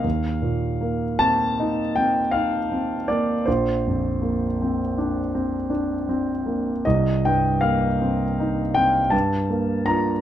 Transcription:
\new Staff \with { instrumentName = "Grand piano" } { \time 9/8 \key bes \major \tempo 4. = 53 << { f''4. a''4 g''8 f''4 d''8 | c''2. r4. | ees''8 g''8 f''4. g''8 a''4 bes''8 | } \\ { ees,8 bes,8 bes8 c'8 ees'8 c'8 ees'8 c'8 bes8 | bes,,8 f,8 bes8 c'8 d'8 c'8 d'8 c'8 bes8 | c,8 g,8 bes8 c'8 ees'8 c'8 g,8 bes8 <d' f'>8 | } >> }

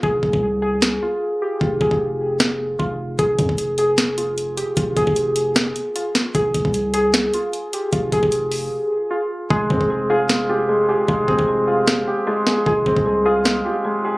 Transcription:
<<
  \new Staff \with { instrumentName = "Synth keys" } { \time 4/4 \key f \minor \tempo 4 = 152 aes'4. aes'4 f'4 g'8 | f'8 aes'2~ aes'8 f'4 | aes'4. aes'4 f'4 g'8 | f'8 aes'2~ aes'8 f'4 |
aes'4. aes'4 f'4 g'8 | f'8 aes'2~ aes'8 f'4 | aes'4. aes'4 f'4 g'8 | f'8 aes'2~ aes'8 f'4 |
aes'4. aes'4 f'4 g'8 | }
  \new Staff \with { instrumentName = "Grand piano" } { \time 4/4 \key f \minor r1 | r1 | r1 | r1 |
r1 | r1 | aes8 c'8 aes8 f'8 aes8 g'8 aes8 aes'8 | aes8 c'8 aes8 f'8 aes8 g'8 aes8 aes'8 |
aes8 c'8 aes8 f'8 aes8 g'8 aes8 aes'8 | }
  \new Staff \with { instrumentName = "808-style bass" } { \clef bass \time 4/4 \key f \minor f,,8 f,,16 c,4.~ c,16 r4. | f,,8 f,,16 f,,2~ f,,16 f,,4 | f,,8 f,16 f,,2. r16 | f,,8 f,,16 f,,4.~ f,,16 r4. |
f,,8 f,,16 c,4.~ c,16 r4. | f,,8 f,,16 f,,4~ f,,16 r2 | f,,8 f,16 f,,2. r16 | f,,8 f,,16 f,,4.~ f,,16 r4. |
f,,8 f,,16 c,4.~ c,16 r4. | }
  \new DrumStaff \with { instrumentName = "Drums" } \drummode { \time 4/4 bd8 bd16 bd16 r4 sn4 r4 | bd8 bd16 bd16 r4 sn4 bd4 | <hh bd>8 <hh bd>16 bd16 hh8 hh8 <hh sn>8 hh8 hh8 hh8 | <hh bd>8 <hh bd>16 bd16 hh8 hh8 <hh sn>8 hh8 hh8 <hh sn>8 |
<hh bd>8 <hh bd>16 bd16 hh8 hh8 <hh sn>8 hh8 hh8 hh8 | <hh bd>8 <hh bd>16 bd16 hh8 hho8 r4 r4 | bd8 bd16 bd16 r4 sn4 r4 | bd8 bd16 bd16 r4 sn4 r8 sn8 |
bd8 bd16 bd16 r4 sn4 r4 | }
>>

